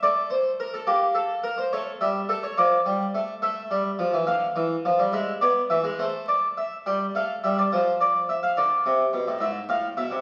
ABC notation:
X:1
M:6/8
L:1/16
Q:3/8=71
K:Dm
V:1 name="Harpsichord"
d2 c2 B A G2 A2 B c | ^c2 e2 A c d6 | e6 f6 | e2 d2 e2 c2 d2 e2 |
g2 f2 e d c2 d2 e f | d6 e2 f2 e2 |]
V:2 name="Harpsichord" clef=bass
A,6 B,6 | A,2 G,2 A,2 F,2 G,2 A,2 | A,2 G,2 F, E, D,2 E,2 F, G, | ^G,2 =B,2 E, G, A,6 |
G,2 A,2 G,2 F,6 | D,2 C,2 =B,, A,, ^G,,2 A,,2 B,, C, |]